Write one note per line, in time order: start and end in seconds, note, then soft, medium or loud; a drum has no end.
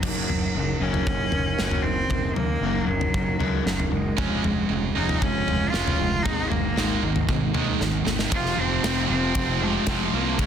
0.00 0.22 F#1 medium
0.00 0.27 F#2 medium
0.00 0.27 C#3 medium
0.00 0.83 F#3 medium
0.00 0.53 F#3 medium
0.00 0.27 F#3 medium
0.00 0.30 C#4 medium
0.00 kick loud
0.00 floor tom medium
0.00 crash loud
0.04 0.29 D#4 loud
0.04 0.27 A#4 loud
0.28 0.48 F#1 medium
0.28 0.52 F#2 medium
0.28 0.53 C#3 medium
0.28 0.54 C#4 medium
0.28 0.55 D#4 medium
0.28 0.56 A#4 medium
0.28 floor tom medium
0.53 0.74 F#1 medium
0.53 0.78 F#2 medium
0.53 0.79 C#3 medium
0.53 0.82 F#3 medium
0.53 0.82 C#4 medium
0.53 0.80 D#4 medium
0.53 0.79 A#4 medium
0.79 1.00 F#1 medium
0.79 1.05 F#2 medium
0.79 1.06 C#3 medium
0.79 1.04 F#3 medium
0.79 1.06 F#3 medium
0.79 1.84 C#4 loud
0.79 1.06 C#4 medium
0.79 1.06 D#4 medium
0.79 1.08 A#4 medium
0.94 floor tom medium
1.05 1.26 F#1 medium
1.05 1.31 F#2 medium
1.05 1.31 C#3 medium
1.05 1.33 F#3 medium
1.05 1.33 C#4 medium
1.05 1.31 D#4 medium
1.05 1.30 A#4 medium
1.05 kick loud
1.31 1.52 F#1 medium
1.31 1.57 F#2 medium
1.31 1.57 C#3 medium
1.31 1.56 F#3 medium
1.31 1.58 C#4 medium
1.31 1.59 D#4 medium
1.31 1.60 A#4 loud
1.31 floor tom medium
1.57 1.78 F#1 medium
1.57 1.83 F#2 medium
1.57 1.84 C#3 medium
1.57 2.07 F#3 medium
1.57 1.84 F#3 medium
1.57 2.10 C#4 medium
1.57 1.84 D#4 medium
1.57 1.82 A#4 medium
1.57 snare medium
1.71 floor tom medium
1.83 2.03 F#1 medium
1.83 2.08 F#2 medium
1.83 2.09 C#3 medium
1.83 2.35 C4 loud
1.83 2.10 D#4 medium
1.83 2.11 A#4 medium
2.08 2.30 F#1 medium
2.08 2.35 F#2 medium
2.08 2.35 C#3 medium
2.08 2.60 F#3 medium
2.08 2.38 C#4 medium
2.08 2.36 D#4 loud
2.08 2.34 A#4 loud
2.08 kick loud
2.08 floor tom medium
2.33 2.56 D#2 medium
2.33 2.60 F#2 medium
2.33 2.60 C#3 medium
2.33 2.85 A#3 loud
2.33 2.62 D#4 medium
2.33 2.63 A#4 medium
2.33 floor tom medium
2.39 2.62 C#4 medium
2.61 2.81 F#1 medium
2.61 2.87 F#2 medium
2.61 2.87 C#3 medium
2.61 2.90 F#3 medium
2.61 2.88 F#3 loud
2.61 2.89 C#4 medium
2.61 2.88 D#4 medium
2.61 2.86 A#4 medium
2.83 3.64 F#3 medium
2.83 3.16 A#4 medium
2.88 3.07 F#1 medium
2.88 3.12 F#2 medium
2.88 3.13 C#3 medium
2.88 3.12 F#3 medium
2.88 3.13 C#4 medium
2.88 3.15 D#4 medium
3.01 floor tom medium
3.13 3.33 F#1 medium
3.13 3.38 F#2 medium
3.13 3.38 C#3 medium
3.13 3.41 F#3 medium
3.13 3.40 C#4 medium
3.13 3.39 D#4 medium
3.13 3.37 A#4 medium
3.13 kick loud
3.39 3.59 C#2 medium
3.39 3.63 F#2 medium
3.39 3.64 C#3 medium
3.39 3.64 F#3 loud
3.39 3.63 F#3 medium
3.39 3.65 C#4 medium
3.39 3.66 D#4 medium
3.39 3.67 A#4 medium
3.39 floor tom medium
3.64 3.85 F#1 medium
3.64 3.89 F#2 medium
3.64 3.89 C#3 medium
3.64 3.89 F#3 medium
3.64 4.16 F#3 medium
3.64 3.93 C#4 medium
3.64 3.91 D#4 medium
3.64 snare medium
3.68 3.90 A#4 medium
3.80 floor tom medium
3.90 4.11 F#1 medium
3.90 4.15 F#2 medium
3.90 4.15 C#3 medium
3.90 4.91 G#3 loud
3.90 4.17 D#4 medium
3.90 4.16 A#4 medium
3.94 4.17 C#4 medium
4.17 4.37 F1 medium
4.17 4.42 C#3 medium
4.17 4.67 F3 loud
4.17 4.42 G#3 medium
4.17 4.42 C#4 medium
4.17 4.45 C#4 medium
4.17 4.44 F4 loud
4.17 4.42 G#4 loud
4.17 kick loud
4.17 floor tom medium
4.43 4.63 F1 medium
4.43 4.67 C#3 medium
4.43 4.67 G#3 medium
4.43 4.69 C#4 medium
4.43 4.70 F4 medium
4.43 4.72 G#4 medium
4.43 floor tom medium
4.69 4.89 F1 medium
4.69 4.94 C#3 medium
4.69 4.97 F3 medium
4.69 4.94 G#3 medium
4.69 4.96 C#4 medium
4.69 4.95 F4 medium
4.69 4.94 G#4 medium
4.95 5.15 F1 loud
4.95 5.20 C#3 medium
4.95 5.19 F3 medium
4.95 5.21 G#3 loud
4.95 5.21 C#4 medium
4.95 5.21 C#4 loud
4.95 5.23 D#4 loud
4.95 5.22 F4 medium
4.95 5.22 G#4 medium
5.09 floor tom medium
5.20 5.41 F1 loud
5.20 5.45 C#3 medium
5.20 5.49 F3 medium
5.20 5.45 G#3 medium
5.20 5.71 C#4 loud
5.20 5.48 C#4 medium
5.20 5.47 F4 medium
5.20 5.46 G#4 medium
5.20 kick loud
5.47 5.67 F1 medium
5.47 5.71 C#3 medium
5.47 5.71 F3 medium
5.47 5.71 G#3 medium
5.47 5.73 C#4 medium
5.47 5.73 F4 medium
5.47 5.75 G#4 loud
5.47 floor tom medium
5.70 5.93 F1 medium
5.70 5.97 C#3 loud
5.70 6.23 F3 medium
5.70 5.97 G#3 medium
5.70 5.98 C#4 loud
5.70 6.24 F4 loud
5.74 6.01 C#4 medium
5.74 5.99 F4 medium
5.74 5.97 G#4 medium
5.74 snare medium
5.88 floor tom medium
5.98 6.19 F1 medium
5.98 6.23 C#3 medium
5.98 6.23 G#3 medium
5.98 6.25 C#4 medium
5.98 6.24 F4 medium
5.98 6.23 G#4 medium
6.22 6.45 G#1 medium
6.22 6.49 G#2 medium
6.22 6.50 D#3 medium
6.22 6.75 G#3 loud
6.22 6.50 G#3 loud
6.22 6.52 A#3 loud
6.22 6.51 D#4 loud
6.22 6.51 D#4 medium
6.22 kick loud
6.22 floor tom medium
6.27 6.49 G#4 loud
6.49 6.70 F#1 medium
6.49 6.74 G#2 medium
6.49 6.75 D#3 medium
6.49 7.28 A#3 loud
6.49 6.77 D#4 medium
6.49 6.78 G#4 medium
6.49 floor tom medium
6.54 6.76 A#3 medium
6.76 6.96 G#1 medium
6.76 7.01 G#2 loud
6.76 7.01 D#3 loud
6.76 7.04 G#3 medium
6.76 7.01 G#3 loud
6.76 7.03 A#3 medium
6.76 7.02 D#4 medium
6.76 7.00 G#4 medium
6.76 snare medium
7.02 7.22 G#1 loud
7.02 7.26 G#2 medium
7.02 7.26 D#3 medium
7.02 7.26 G#3 medium
7.02 7.28 A#3 medium
7.02 7.29 D#4 medium
7.02 7.30 G#4 medium
7.16 floor tom medium
7.27 7.48 G#1 loud
7.27 7.52 G#2 medium
7.27 7.53 D#3 medium
7.27 7.55 G#3 medium
7.27 7.55 A#3 medium
7.27 7.54 D#4 medium
7.27 7.52 G#4 medium
7.27 kick loud
7.27 mid tom medium
7.53 7.73 D#2 medium
7.53 7.78 G#2 medium
7.53 7.79 D#3 medium
7.53 7.79 G#3 loud
7.53 7.77 G#3 medium
7.53 7.79 A#3 medium
7.53 7.80 D#4 medium
7.53 7.81 G#4 medium
7.53 floor tom medium
7.53 mid tom medium
7.78 8.00 G#1 medium
7.78 8.04 G#2 medium
7.78 8.03 D#3 medium
7.78 8.29 G#3 medium
7.78 8.06 A#3 medium
7.78 8.05 D#4 medium
7.78 8.03 G#4 medium
7.78 snare medium
8.04 8.26 G#1 medium
8.04 8.29 G#2 medium
8.04 8.29 D#3 medium
8.04 8.31 A#3 medium
8.04 8.30 D#4 medium
8.04 8.29 G#4 medium
8.04 snare medium
8.19 snare medium
8.31 8.53 F1 medium
8.31 8.55 F2 medium
8.31 8.55 C3 medium
8.31 8.57 F3 medium
8.31 8.62 F4 loud
8.31 kick loud
8.31 ride bell medium
8.46 snare soft
8.56 8.79 F1 medium
8.56 8.82 F2 medium
8.56 8.82 C3 medium
8.56 8.84 F3 medium
8.56 9.10 C4 loud
8.83 9.05 F1 medium
8.83 9.07 F2 medium
8.83 9.07 C3 medium
8.83 9.08 F3 medium
8.83 snare loud
8.83 ride bell medium
9.08 9.31 F1 loud
9.08 9.33 F2 medium
9.08 9.33 C3 medium
9.08 9.35 F3 medium
9.08 9.63 C4 loud
9.35 9.78 F1 loud
9.35 9.60 F2 loud
9.35 9.61 C3 loud
9.35 9.62 F3 loud
9.35 kick loud
9.35 ride bell medium
9.61 9.85 F2 medium
9.61 9.87 C3 medium
9.61 9.88 F3 loud
9.61 10.16 G#3 medium
9.87 10.08 F1 medium
9.87 10.12 F2 medium
9.87 10.13 C3 medium
9.87 10.14 F3 medium
9.87 kick medium
9.87 snare loud
9.87 ride bell medium
10.13 10.39 C2 medium
10.13 10.37 F2 medium
10.13 10.38 C3 medium
10.13 10.38 F3 loud
10.13 10.42 A#3 medium
10.38 10.46 C#2 medium
10.38 10.46 C#3 medium
10.38 10.46 G#3 medium
10.38 10.46 C#4 medium
10.38 kick loud
10.38 ride bell medium